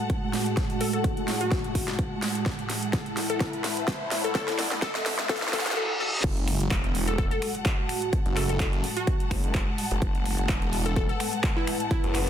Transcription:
0.00 5.73 A2 medium
0.00 5.73 G#3 medium
0.00 5.77 G#3 medium
0.00 2.42 F#4 medium
0.00 5.77 F#5 medium
0.00 5.77 A5 medium
0.00 riser medium
0.10 kick loud
0.10 closed hi-hat medium
0.33 snare medium
0.33 open hi-hat medium
0.46 closed hi-hat soft
0.57 kick loud
0.57 snare medium
0.57 closed hi-hat medium
0.70 closed hi-hat soft
0.81 0.89 A4 medium
0.81 open hi-hat loud
0.93 1.00 A4 medium
0.93 closed hi-hat medium
1.04 kick loud
1.04 closed hi-hat medium
1.17 closed hi-hat soft
1.28 snare medium
1.28 open hi-hat medium
1.41 1.75 F#4 medium
1.41 closed hi-hat medium
1.51 kick loud
1.51 snare medium
1.51 closed hi-hat medium
1.64 closed hi-hat soft
1.75 kick medium
1.75 open hi-hat loud
1.88 snare medium
1.88 closed hi-hat medium
1.99 kick loud
1.99 closed hi-hat medium
2.22 snare medium
2.22 open hi-hat medium
2.35 closed hi-hat soft
2.46 5.73 E4 medium
2.46 kick loud
2.46 snare medium
2.46 closed hi-hat medium
2.59 closed hi-hat soft
2.70 snare medium
2.70 open hi-hat loud
2.83 closed hi-hat medium
2.93 kick loud
2.93 snare medium
2.93 closed hi-hat medium
3.06 closed hi-hat soft
3.17 snare medium
3.17 open hi-hat medium
3.30 3.38 A4 medium
3.30 closed hi-hat medium
3.40 kick loud
3.40 snare medium
3.40 closed hi-hat medium
3.53 closed hi-hat soft
3.64 snare medium
3.64 open hi-hat loud
3.77 closed hi-hat medium
3.88 kick loud
3.88 snare medium
3.88 closed hi-hat medium
4.11 snare medium
4.11 open hi-hat loud
4.24 4.33 A4 medium
4.24 closed hi-hat soft
4.35 4.45 A4 medium
4.35 kick loud
4.35 snare medium
4.35 closed hi-hat medium
4.48 snare medium
4.48 closed hi-hat soft
4.59 snare medium
4.59 open hi-hat loud
4.71 snare medium
4.71 closed hi-hat medium
4.82 4.93 A4 medium
4.82 kick loud
4.82 snare loud
4.82 closed hi-hat medium
4.95 snare medium
4.95 closed hi-hat soft
5.06 snare loud
5.06 open hi-hat medium
5.19 snare medium
5.19 closed hi-hat soft
5.29 5.40 A4 medium
5.29 kick loud
5.29 snare loud
5.29 closed hi-hat medium
5.29 reverse cymbal medium
5.36 snare medium
5.42 snare medium
5.42 closed hi-hat soft
5.48 snare medium
5.53 5.63 A4 medium
5.53 kick medium
5.53 snare loud
5.53 open hi-hat loud
5.60 snare medium
5.66 snare medium
5.66 closed hi-hat medium
5.71 snare medium
5.77 5.87 A4 medium
6.00 6.11 A4 loud
6.24 6.58 F#1 loud
6.24 12.30 A2 medium
6.24 12.30 G#3 medium
6.24 10.01 F#4 medium
6.24 kick loud
6.24 closed hi-hat medium
6.24 crash loud
6.24 impact medium
6.37 closed hi-hat soft
6.48 finger snap medium
6.48 open hi-hat loud
6.60 6.69 F#1 medium
6.60 closed hi-hat medium
6.71 6.93 E1 medium
6.71 12.30 F#5 medium
6.71 kick loud
6.71 clap loud
6.71 closed hi-hat medium
6.84 closed hi-hat soft
6.95 7.29 E1 loud
6.95 open hi-hat medium
7.08 7.16 A4 medium
7.08 closed hi-hat medium
7.18 7.27 A4 medium
7.18 kick loud
7.18 closed hi-hat medium
7.31 7.38 A4 medium
7.31 closed hi-hat soft
7.42 finger snap medium
7.42 open hi-hat loud
7.50 12.30 A5 medium
7.55 closed hi-hat medium
7.66 kick loud
7.66 clap loud
7.66 closed hi-hat medium
7.89 finger snap medium
7.89 open hi-hat medium
8.02 closed hi-hat medium
8.13 kick loud
8.13 closed hi-hat medium
8.26 8.47 F#1 loud
8.26 closed hi-hat soft
8.36 8.45 A4 medium
8.36 finger snap medium
8.36 clap soft
8.36 open hi-hat loud
8.49 8.82 F#1 medium
8.49 8.56 A4 medium
8.49 closed hi-hat medium
8.60 kick loud
8.60 clap loud
8.60 closed hi-hat medium
8.73 closed hi-hat soft
8.84 open hi-hat medium
8.97 9.31 F#4 medium
8.97 closed hi-hat medium
9.07 kick loud
9.07 closed hi-hat medium
9.20 closed hi-hat soft
9.31 9.42 F#1 loud
9.31 finger snap medium
9.31 kick medium
9.31 open hi-hat loud
9.44 9.65 F#1 loud
9.44 closed hi-hat medium
9.55 kick loud
9.55 clap loud
9.55 closed hi-hat medium
9.78 open hi-hat medium
9.91 10.00 F#1 loud
9.91 closed hi-hat medium
10.02 10.36 F#1 loud
10.02 12.30 B4 medium
10.02 kick loud
10.02 closed hi-hat medium
10.15 closed hi-hat soft
10.26 finger snap medium
10.26 open hi-hat loud
10.38 10.47 F#1 medium
10.38 closed hi-hat medium
10.49 10.71 E1 medium
10.49 kick loud
10.49 clap loud
10.49 closed hi-hat medium
10.62 closed hi-hat soft
10.73 11.07 E1 loud
10.73 open hi-hat loud
10.86 10.94 A4 medium
10.86 closed hi-hat medium
10.96 11.05 A4 medium
10.96 kick loud
10.96 closed hi-hat medium
11.09 11.16 A4 medium
11.09 closed hi-hat soft
11.20 finger snap medium
11.20 open hi-hat loud
11.33 closed hi-hat medium
11.44 kick loud
11.44 clap loud
11.44 closed hi-hat medium
11.56 11.75 E4 medium
11.67 finger snap medium
11.67 open hi-hat medium
11.80 closed hi-hat soft
11.91 12.11 E4 medium
11.91 kick loud
11.91 closed hi-hat medium
12.04 12.25 F#1 loud
12.04 closed hi-hat soft
12.15 finger snap medium
12.15 clap soft
12.15 open hi-hat loud

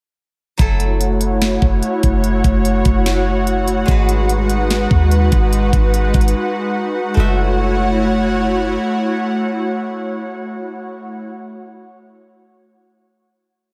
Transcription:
0.58 1.58 F#1 loud
0.58 3.93 F#3 medium
0.58 3.85 A3 medium
0.58 3.85 E4 medium
0.58 7.13 F#4 medium
0.58 3.85 A4 medium
0.58 3.85 C#5 medium
0.58 7.13 F#5 medium
0.58 kick loud
0.58 closed hi-hat medium
0.80 closed hi-hat medium
1.01 closed hi-hat medium
1.21 closed hi-hat medium
1.42 snare loud
1.42 closed hi-hat medium
1.62 1.82 F#1 loud
1.62 kick medium
1.83 closed hi-hat medium
2.03 2.43 F#1 loud
2.03 kick medium
2.03 closed hi-hat medium
2.24 closed hi-hat medium
2.44 2.84 F#1 loud
2.44 kick loud
2.44 closed hi-hat medium
2.65 closed hi-hat medium
2.85 3.84 F#1 loud
2.85 kick loud
2.85 closed hi-hat medium
3.06 snare loud
3.06 closed hi-hat medium
3.47 closed hi-hat medium
3.68 closed hi-hat medium
3.86 4.87 G#1 loud
3.86 7.22 G#3 medium
3.86 7.14 G#3 medium
3.86 7.14 D#4 medium
3.86 7.14 F#4 medium
3.86 7.14 B4 medium
3.86 kick loud
3.86 closed hi-hat medium
3.91 7.14 B4 medium
4.09 closed hi-hat medium
4.29 closed hi-hat medium
4.50 closed hi-hat medium
4.70 snare loud
4.70 closed hi-hat medium
4.91 5.30 D#2 loud
4.91 kick medium
5.11 closed hi-hat medium
5.32 5.72 G#1 loud
5.32 kick medium
5.32 closed hi-hat medium
5.53 closed hi-hat medium
5.73 6.13 G#1 loud
5.73 kick medium
5.73 closed hi-hat medium
5.94 closed hi-hat medium
6.14 6.34 G#1 loud
6.14 kick loud
6.14 closed hi-hat soft
6.14 open hi-hat medium
6.21 closed hi-hat medium
6.28 closed hi-hat medium
7.14 8.77 F#1 loud
7.14 11.68 A3 medium
7.14 11.22 A3 medium
7.14 11.22 E4 medium
7.14 11.22 F#4 medium
7.14 11.68 F#4 medium
7.14 11.22 C#5 medium
7.14 11.22 F#5 medium
7.20 11.68 E5 medium

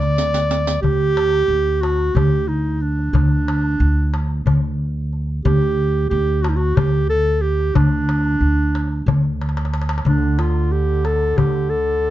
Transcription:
0.00 0.79 D2 medium
0.00 0.81 D5 loud
0.00 riq soft
0.00 darbuka ka soft
0.18 riq medium
0.18 darbuka ka soft
0.34 riq medium
0.51 riq medium
0.67 riq medium
0.82 1.45 D2 medium
0.82 1.83 G4 loud
0.82 darbuka dum medium
1.17 darbuka tek medium
1.48 2.11 D2 medium
1.81 2.17 F#4 medium
1.81 darbuka tek medium
2.15 3.10 D2 medium
2.15 2.50 G4 medium
2.15 darbuka dum medium
2.48 2.83 D#4 medium
2.81 3.14 D4 medium
2.81 darbuka ka soft
2.99 darbuka ka soft
3.13 3.76 D2 medium
3.13 4.43 D4 medium
3.13 darbuka dum medium
3.48 darbuka tek medium
3.80 4.42 D2 medium
4.14 darbuka tek medium
4.46 5.41 D2 medium
4.46 darbuka dum medium
5.13 darbuka ka soft
5.45 6.07 D2 loud
5.45 6.07 G4 medium
5.45 darbuka dum medium
6.10 6.73 D2 medium
6.10 6.44 G4 medium
6.42 6.51 F#4 medium
6.42 darbuka tek medium
6.49 6.58 D#4 medium
6.56 6.77 F#4 medium
6.76 7.72 D2 medium
6.76 7.09 G4 medium
6.76 darbuka dum loud
7.10 7.43 A4 loud
7.41 7.77 G4 medium
7.41 darbuka ka soft
7.60 darbuka ka soft
7.75 8.37 D2 loud
7.75 9.40 D4 medium
7.75 darbuka dum loud
8.09 darbuka tek medium
8.40 9.03 D2 medium
8.40 darbuka ka soft
8.75 darbuka tek medium
9.06 10.02 D2 medium
9.06 darbuka dum medium
9.41 darbuka tek medium
9.49 darbuka ka medium
9.57 darbuka tek medium
9.65 darbuka ka medium
9.74 darbuka tek medium
9.82 darbuka ka medium
9.89 darbuka tek medium
9.98 darbuka ka medium
10.05 11.33 D2 medium
10.05 12.10 D3 medium
10.05 10.40 D4 medium
10.05 darbuka dum medium
10.39 10.74 F4 medium
10.39 darbuka tek medium
10.72 11.07 G4 medium
11.05 11.39 A4 medium
11.05 darbuka tek medium
11.37 12.10 D2 medium
11.37 11.71 G4 medium
11.37 darbuka dum medium
11.70 12.10 A4 medium
11.70 darbuka ka soft
12.03 darbuka ka soft

